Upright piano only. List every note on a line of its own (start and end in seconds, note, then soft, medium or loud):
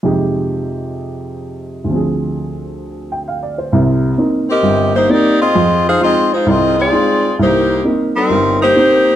0.03 1.88 F2 soft
0.03 1.88 C3 soft
0.03 1.88 G#3 soft
0.03 1.88 D#4 soft
0.03 1.88 G4 medium
1.84 3.70 D2 soft
1.84 3.71 D3 soft
1.90 3.73 F3 soft
1.90 3.74 C4 soft
1.95 3.75 G#4 soft
3.12 3.35 G5 soft
3.28 3.55 F5 soft
3.43 3.66 D5 soft
3.58 3.81 C5 soft
3.72 4.12 C2 medium
3.72 4.12 C3 medium
4.18 4.50 A#3 soft
4.18 4.50 C4 soft
4.18 4.50 D#4 soft
4.63 5.03 G1 medium
5.09 5.41 A#3 soft
5.09 5.41 C4 soft
5.09 5.42 D#4 soft
5.55 5.95 F2 medium
6.01 6.33 G#3 soft
6.01 6.33 D#4 soft
6.01 6.33 F4 soft
6.46 6.86 C2 medium
6.92 7.24 G#3 soft
6.92 7.25 D#4 soft
6.92 7.25 F4 medium
7.39 7.78 C2 medium
7.84 8.16 A#3 soft
7.84 8.17 C4 soft
7.84 8.17 D#4 soft
8.30 8.70 G1 medium
8.75 9.07 A#3 soft
8.75 9.08 C4 soft
8.75 9.08 D#4 soft